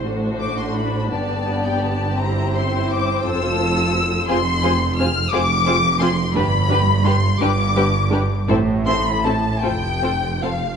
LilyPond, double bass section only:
\new Staff \with { instrumentName = "Double bass section" } { \clef bass \time 6/8 \key f \lydian \tempo 4. = 57 a,,4. g,,4.~ | g,,4. f,,4. | f,,4. f,,4. | g,,4. g,,4. |
a,,4. f,,4. | }